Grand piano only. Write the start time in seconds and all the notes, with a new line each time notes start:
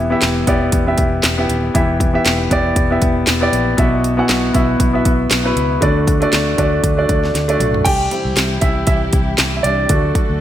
Already playing: E3 B3 E4 G4 E5
0.10 B3 E4 G4 E5
0.47 B3 E4 G4 D5
0.86 B3 E4 G4 E5
1.38 B3 E4 G4 E5
1.74 E3 B3 E4 G4 E5
2.13 B3 E4 G4 E5
2.51 B3 E4 G4 D5
2.90 B3 E4 G4 E5
3.41 B3 E4 G4 D5
3.77 B2 B3 E4 F#4 E5
4.17 B3 E4 F#4 F#5
4.53 B3 E4 F#4 E5
4.93 B3 E4 F#4 E5
5.44 B3 E4 F#4 B4
5.81 D3 A3 D4 F#4 D5
6.20 A3 D4 F#4 D5
6.57 A3 D4 F#4 D5
6.97 A3 D4 F#4 D5
7.48 A3 D4 F#4 D5
7.85 G4 G5
8.11 G3 C4 E4
8.61 E4 E5
8.87 E4 E5
9.57 E5
9.63 D4 D5
9.90 A3 D4 F#4